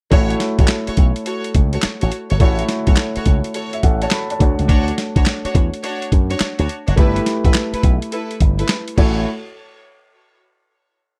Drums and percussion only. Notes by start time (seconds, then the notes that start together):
0.12 kick, closed hi-hat
0.30 closed hi-hat
0.40 snare, closed hi-hat
0.59 kick, closed hi-hat
0.68 snare, clap, closed hi-hat
0.87 closed hi-hat
0.97 kick, closed hi-hat
1.16 closed hi-hat
1.26 closed hi-hat
1.44 closed hi-hat
1.54 kick, closed hi-hat
1.73 closed hi-hat
1.82 snare, clap, closed hi-hat
2.01 closed hi-hat
2.12 closed hi-hat
2.30 closed hi-hat
2.40 kick, closed hi-hat
2.59 closed hi-hat
2.69 snare, closed hi-hat
2.87 kick, closed hi-hat
2.96 snare, clap, closed hi-hat
3.16 closed hi-hat
3.26 kick, closed hi-hat
3.44 closed hi-hat
3.54 closed hi-hat
3.73 closed hi-hat
3.83 kick, closed hi-hat
4.02 closed hi-hat
4.11 snare, clap, closed hi-hat
4.30 closed hi-hat
4.40 kick, closed hi-hat
4.59 closed hi-hat
4.69 kick, closed hi-hat
4.88 closed hi-hat
4.98 snare, closed hi-hat
5.16 kick, closed hi-hat
5.26 snare, clap, closed hi-hat
5.45 closed hi-hat
5.55 kick, closed hi-hat
5.74 closed hi-hat
5.84 closed hi-hat
6.02 closed hi-hat
6.12 kick, closed hi-hat
6.31 closed hi-hat
6.40 snare, clap, closed hi-hat
6.59 closed hi-hat
6.69 closed hi-hat
6.88 closed hi-hat
6.97 kick, closed hi-hat
7.16 closed hi-hat
7.26 snare, closed hi-hat
7.45 kick, closed hi-hat
7.54 snare, clap, closed hi-hat
7.74 closed hi-hat
7.83 kick, closed hi-hat
8.02 closed hi-hat
8.12 closed hi-hat
8.31 closed hi-hat
8.40 kick, closed hi-hat
8.59 closed hi-hat
8.68 snare, clap, closed hi-hat
8.88 closed hi-hat
8.98 kick, crash